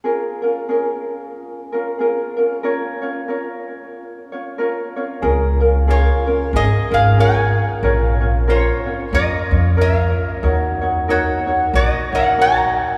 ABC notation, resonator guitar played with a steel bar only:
X:1
M:4/4
L:1/16
Q:"Swing" 1/4=92
K:Db
V:1 name="Resonator guitar played with a steel bar"
z16 | z16 | z4 [Fd]4 [Ae]2 [Af]2 [da]3 z | z4 [Fd]4 [Be]4 [Bf]3 z |
z4 [Gd]4 [Ge]2 [Bg]2 [db]3 z |]